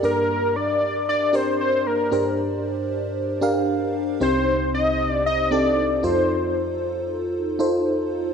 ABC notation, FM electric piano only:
X:1
M:4/4
L:1/16
Q:"Swing 16ths" 1/4=115
K:Gm
V:1 name="FM electric piano"
[DGBd]6 z4 [DGBd]4- [DGBd] z | [DGBc]6 z4 [DGBf]4- [DGBf] z | [CEGc]6 z4 [CEGA]4 [EFAc]2- | [EFAc]4 z6 [EFAc]4- [EFAc] z |]
V:2 name="FM electric piano" clef=bass
G,,16 | G,,16 | [C,,C,]12- [C,,C,]2 F,,2- | F,,12- F,,2 z2 |]